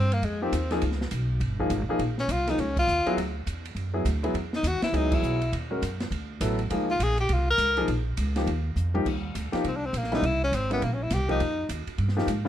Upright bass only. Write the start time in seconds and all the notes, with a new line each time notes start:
Already playing: G2
0.22 F2
0.52 D#2
0.82 C#2
1.11 B1
1.40 G1
1.70 G#1
1.88 muted upright bass stroke
1.99 A#1
2.28 C2
2.58 C#2
2.87 D#2
3.06 muted upright bass stroke
3.17 D2
3.46 E2
3.75 F#2
4.05 D2
4.34 E2
4.63 D#2
4.82 muted upright bass stroke
4.93 C#2
5.22 B1
5.52 D#2
5.82 F#2
6.11 D2
6.41 A1
6.71 C#2
6.99 A#1
7.29 C2
7.58 C#2
7.88 A#1
8.17 C#2
8.46 D#2
8.76 F2
9.05 D#2
9.35 D2
9.53 muted upright bass stroke
9.64 C2
9.93 A#1
10.22 C2
10.52 G#1
10.82 A#1
11.11 C2
11.40 F2
11.69 D#2
11.87 muted upright bass stroke
11.98 G2
12.27 G#2